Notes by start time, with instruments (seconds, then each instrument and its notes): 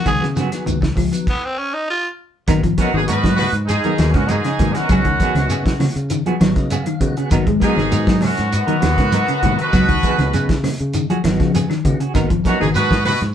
0.06 fingered electric bass C#2, clean electric guitar D#3 F#3 B3 F#4 G#4, tenor saxophone G#4, kick, closed hi-hat, claves, shekere
0.22 fingered electric bass C#3, snare
0.36 clean electric guitar C#3 F#3 B3 F#4 G#4, snare, closed hi-hat, high conga, shekere
0.51 tonewheel organ D#3 F#3 B3, snare, closed hi-hat, claves, shekere
0.66 fingered electric bass C#2, clean electric guitar D#3, muted clean electric guitar stroke, closed hi-hat, low conga, shekere
0.81 muted clean electric guitar stroke, kick, snare, high conga
0.95 fingered electric bass C#2, clean electric guitar F3, muted clean electric guitar stroke, kick, open hi-hat, low conga, claves, shekere
1.12 tonewheel organ D#3 F#3 B3, muted clean electric guitar stroke, closed hi-hat, shekere
1.27 tenor saxophone B3, kick, crash
1.45 tenor saxophone C4
1.58 tenor saxophone C#4
1.74 tenor saxophone D#4
1.90 tenor saxophone F4
2.47 fingered electric bass G#1, clean electric guitar D#3 F#3 B3 D#4 A#4, tonewheel organ F#3 A#3 B3, kick, snare, closed hi-hat, claves, shekere
2.63 clean electric guitar F3, muted clean electric guitar stroke, kick, closed hi-hat
2.77 trombone section F#2, tonewheel organ F#3 A#3 B3, clean electric guitar F#3 B3 D#4 A#4, trumpet C#4, horn section F#4, kick, snare, closed hi-hat, high conga, shekere
2.93 fingered electric bass G#1, trombone section G#2, clean electric guitar D#3, trumpet D#4, claves
2.97 horn section G#4
3.06 fingered electric bass G#2, trombone section B2, clean electric guitar F#3 B3 D#4 A#4, trumpet F#4, closed hi-hat, shekere
3.11 horn section B4
3.24 clean electric guitar F#3, muted clean electric guitar stroke, kick, snare, high conga
3.36 trombone section B2, trumpet F#4, horn section B4, open hi-hat, high conga, low conga, claves, shekere
3.52 fingered electric bass G#2, muted clean electric guitar stroke, closed hi-hat
3.65 trombone section G#2, trumpet D#4, horn section G#4, closed hi-hat, shekere
3.69 muted clean electric guitar stroke, snare
3.84 clean electric guitar D#3 F#3 B3 D#4 A#4, closed hi-hat, high conga
3.98 fingered electric bass D#2, tonewheel organ F#3 A#3 B3, snare, closed hi-hat, high conga, claves, shekere
4.11 trombone section F#2, fingered electric bass G#2, clean electric guitar C#3, trumpet C#4, horn section F#4, kick, snare, closed hi-hat
4.27 trombone section G#2, clean electric guitar F#3 B3 D#4, trumpet D#4, horn section G#4, closed hi-hat, high conga, shekere
4.31 clean electric guitar A#4
4.44 clean electric guitar C#3, muted clean electric guitar stroke, snare, closed hi-hat, claves
4.59 fingered electric bass G#2, clean electric guitar D#3, tonewheel organ F#3 A#3 B3, kick, snare, closed hi-hat, high conga, low conga, shekere
4.72 trombone section F#2, trumpet C#4, horn section F#4, closed hi-hat
4.76 clean electric guitar B3 D#4 A#4, snare
4.89 fingered electric bass C#2, clean electric guitar F#3 B3 F#4 G#4, tonewheel organ F#3 B3 D#4, kick, closed hi-hat, claves, shekere
5.05 clean electric guitar D#3, muted clean electric guitar stroke, kick, closed hi-hat
5.20 tonewheel organ F#3 B3 D#4, clean electric guitar F#3 B3 F#4 G#4, kick, snare, closed hi-hat, high conga, shekere
5.35 fingered electric bass C#2, clean electric guitar C#3, snare, closed hi-hat, low conga, claves
5.48 fingered electric bass C#3, clean electric guitar F#3 B3 F#4 G#4, closed hi-hat, shekere
5.66 muted clean electric guitar stroke, kick, snare, closed hi-hat
5.80 clean electric guitar C#3, snare, open hi-hat, high conga, low conga, claves, shekere
5.96 fingered electric bass C#3, muted clean electric guitar stroke, closed hi-hat
6.10 clean electric guitar D#3, muted clean electric guitar stroke, closed hi-hat, shekere
6.26 clean electric guitar F3 F#3 B3 F#4 G#4, closed hi-hat, high conga
6.40 fingered electric bass G#1, clean electric guitar F#3, tonewheel organ F#3 B3 D#4 C#5, snare, closed hi-hat, high conga, claves, shekere
6.56 fingered electric bass C#3, tonewheel organ D#5, muted clean electric guitar stroke, kick, snare, closed hi-hat
6.70 clean electric guitar F#3 B3 F#4 G#4, tonewheel organ F5, closed hi-hat, high conga, shekere
6.86 clean electric guitar D#3, muted clean electric guitar stroke, closed hi-hat, claves
7.01 fingered electric bass C#3, tonewheel organ F#3 B3 D#4 F#5, muted clean electric guitar stroke, kick, closed hi-hat, low conga, shekere
7.17 clean electric guitar C#3 B3 F#4 G#4, closed hi-hat
7.31 fingered electric bass G#1, clean electric guitar D#3 F#3 B3 D#4 A#4, tonewheel organ A#3 B3 F#4, kick, closed hi-hat, claves, shekere
7.46 clean electric guitar G#3, muted clean electric guitar stroke, kick, closed hi-hat, high conga
7.60 trombone section G#2, clean electric guitar F#3 B3 D#4 A#4, tonewheel organ A#3 B3 F#4, trumpet D#4, horn section G#4, kick, snare, closed hi-hat, high conga, shekere
7.76 fingered electric bass G#1, clean electric guitar D#3, snare, low conga, claves
7.91 fingered electric bass G#2, clean electric guitar F#3 B3 D#4 A#4, closed hi-hat, shekere
8.07 clean electric guitar F#3, muted clean electric guitar stroke, kick, snare
8.21 trombone section F#2, trumpet C#4, horn section F#4, snare, open hi-hat, high conga, low conga, claves, shekere
8.37 fingered electric bass G#2, muted clean electric guitar stroke, snare, closed hi-hat
8.52 trombone section F#2, trumpet B3, horn section F#4, muted clean electric guitar stroke, closed hi-hat, shekere
8.67 clean electric guitar D#3 F#3 B3 D#4 A#4, closed hi-hat, high conga
8.82 fingered electric bass D#2, tonewheel organ A#3 B3 F#4, snare, closed hi-hat, high conga, claves, shekere
8.98 fingered electric bass G#2, clean electric guitar C#3, kick, snare, closed hi-hat
9.12 clean electric guitar F#3 B3 D#4 A#4, closed hi-hat, high conga, shekere
9.27 clean electric guitar C#3, muted clean electric guitar stroke, closed hi-hat, claves
9.42 fingered electric bass G#2, clean electric guitar D#3, tonewheel organ A#3 B3 F#4, kick, closed hi-hat, high conga, low conga, shekere
9.57 trombone section B2, clean electric guitar B3 D#4 A#4, trumpet F#4, horn section B4, closed hi-hat
9.73 fingered electric bass C#2, clean electric guitar F#3 B3 F#4, tonewheel organ B3 D#4 F#4, muted clean electric guitar stroke, kick, closed hi-hat, claves, shekere
9.88 clean electric guitar D#3, muted clean electric guitar stroke, kick, closed hi-hat, high conga
10.02 clean electric guitar F#3 B3 F#4 G#4, tonewheel organ B3 D#4 G#4, kick, snare, closed hi-hat, high conga, shekere
10.18 fingered electric bass C#2, clean electric guitar C#3, muted clean electric guitar stroke, snare, closed hi-hat, low conga, claves
10.33 fingered electric bass C#3, clean electric guitar F#3 B3 G#4, snare, closed hi-hat, shekere
10.49 muted clean electric guitar stroke, kick, snare, closed hi-hat, high conga
10.64 clean electric guitar C#3, snare, open hi-hat, high conga, low conga, claves, shekere
10.80 fingered electric bass C#3, muted clean electric guitar stroke, closed hi-hat
10.93 clean electric guitar D#3, muted clean electric guitar stroke, closed hi-hat, shekere
11.10 clean electric guitar F3 F#3 F#4 G#4, muted clean electric guitar stroke, closed hi-hat, high conga
11.24 fingered electric bass G#1, clean electric guitar F#3, tonewheel organ B3 D#4 F#4, snare, closed hi-hat, high conga, claves, shekere
11.40 fingered electric bass C#3, clean electric guitar F3, kick, snare, closed hi-hat
11.54 clean electric guitar F#3 B3 G#4, closed hi-hat, high conga, shekere
11.70 clean electric guitar D#3, muted clean electric guitar stroke, snare, closed hi-hat, claves
11.85 fingered electric bass C#3, tonewheel organ B3 D#4 F#4, muted clean electric guitar stroke, kick, closed hi-hat, low conga, shekere
12.00 clean electric guitar C#3 F#4 G#4, muted clean electric guitar stroke, closed hi-hat
12.14 fingered electric bass G#1, clean electric guitar D#3 B3 D#4 A#4, tonewheel organ A#3 B3 F#4, muted clean electric guitar stroke, kick, snare, closed hi-hat, claves, shekere
12.30 clean electric guitar F3, muted clean electric guitar stroke, kick, closed hi-hat
12.44 trombone section F#2, clean electric guitar F#3 B3 D#4 A#4, tonewheel organ A#3 B3 F#4, trumpet C#4, horn section F#4, kick, snare, closed hi-hat, high conga, shekere
12.60 fingered electric bass G#1, trombone section G#2, clean electric guitar D#3, trumpet D#4, horn section G#4, snare, low conga, claves
12.74 fingered electric bass G#2, trombone section B2, clean electric guitar F#3 B3 A#4, trumpet F#4, horn section B4, muted clean electric guitar stroke, snare, closed hi-hat, shekere
12.91 muted clean electric guitar stroke, kick, snare, high conga
13.04 trombone section B2, trumpet F#4, horn section B4, open hi-hat, high conga, low conga, claves, shekere
13.21 fingered electric bass G#2, muted clean electric guitar stroke, snare, closed hi-hat